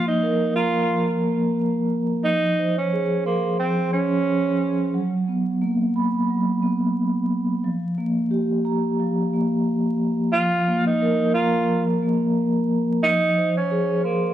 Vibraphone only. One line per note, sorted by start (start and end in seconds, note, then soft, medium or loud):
0.00 0.89 F3 medium
0.00 1.23 A#3 medium
0.23 2.25 A#4 medium
0.57 2.25 A#5 medium
0.90 2.23 F3 medium
1.24 2.25 A#3 medium
2.25 3.59 F3 medium
2.59 4.95 C5 medium
2.93 4.95 G#4 medium
3.26 4.95 C6 medium
3.60 4.95 F3 medium
3.94 4.95 C#4 medium
4.94 6.28 F#3 loud
5.28 6.61 B3 medium
5.62 7.64 A#3 medium
5.96 7.64 B5 medium
6.30 7.64 F#3 medium
6.62 7.64 B3 medium
7.64 8.99 F3 medium
7.98 9.32 A#3 medium
8.31 10.33 G4 medium
8.65 10.34 A#5 medium
9.00 10.34 F3 medium
9.34 10.34 A#3 medium
10.35 11.67 F3 medium
10.68 12.01 A#3 medium
11.02 13.04 A#4 medium
11.35 13.04 A#5 medium
11.69 13.02 F3 medium
12.03 13.04 A#3 medium
13.03 14.34 F3 loud
13.38 14.34 C5 medium
13.71 14.34 G#4 medium
14.04 14.34 C6 medium